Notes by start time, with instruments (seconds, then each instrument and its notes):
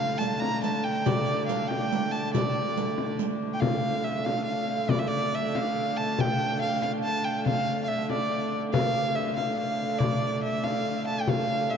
Already playing: hurdy-gurdy D3 A3, violin F5
0.18 violin A5, riq
0.40 violin A#5, frame drum
0.64 violin A5, riq
0.84 violin G5, riq
1.06 violin D5, riq, frame drum
1.47 violin F5, riq
1.68 violin G5, frame drum
1.93 riq
2.12 violin A5, riq
2.34 violin D5, riq, frame drum
2.56 frame drum
2.77 riq
2.98 frame drum
3.19 riq
3.41 frame drum
3.54 violin G5
3.60 hurdy-gurdy D3 A3, violin F5, frame drum
4.04 violin E5, frame drum
4.25 violin F5, frame drum
4.45 violin F5
4.89 violin D5, frame drum
4.99 violin E5
5.08 violin D5
5.33 violin E5, frame drum
5.55 violin F5, frame drum
5.97 violin A5
6.19 violin G5, frame drum
6.61 violin F5, frame drum
6.82 violin F5, frame drum
7.04 violin A5
7.24 violin G5
7.46 violin F5, frame drum
7.67 frame drum
7.84 violin F5
7.88 violin E5
8.10 violin D5, frame drum
8.53 frame drum
8.72 hurdy-gurdy D3 A3, violin F5, frame drum
9.15 violin E5, frame drum
9.37 violin F5, frame drum
9.58 violin F5
9.99 violin D5, frame drum
10.42 violin E5, frame drum
10.64 violin F5, frame drum
11.07 violin A5
11.21 violin G5
11.27 violin F5, frame drum
11.70 violin E5, frame drum